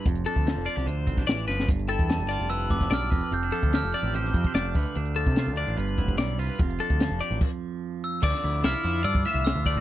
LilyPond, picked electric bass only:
\new Staff \with { instrumentName = "Picked electric bass" } { \clef bass \time 4/4 \key d \dorian \tempo 4 = 147 f,,8 r16 d,8 f,,16 r16 c,16 d,8 b,,8 a,,8 g,,8 | g,,8. e,8 g,,8 f,,8. f,,8 b,,8 f,,16 r16 | f,,8 r16 d,8 f,,16 r16 a,,8. f,16 r16 f,,8 d,16 r16 | d,8. c8 d,8 a,,16 g,,8 f,,8 b,,8 c,16 r16 |
f,,8 r16 d,8 f,,16 r16 a,,16 r2 | d,16 r16 d,8 c,16 r16 f,8 g,8 r16 c,8 d,8 a,,16 | }